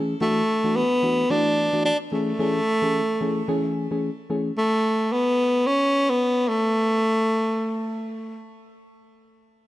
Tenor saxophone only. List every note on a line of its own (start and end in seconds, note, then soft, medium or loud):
0.22 0.78 A3 loud
0.77 1.33 B3 loud
1.31 1.85 D4 loud
1.86 1.98 D4 loud
2.13 3.72 A3 medium
4.58 5.14 A3 loud
5.13 5.69 B3 loud
5.67 6.11 C#4 loud
6.10 6.50 B3 loud
6.49 8.39 A3 loud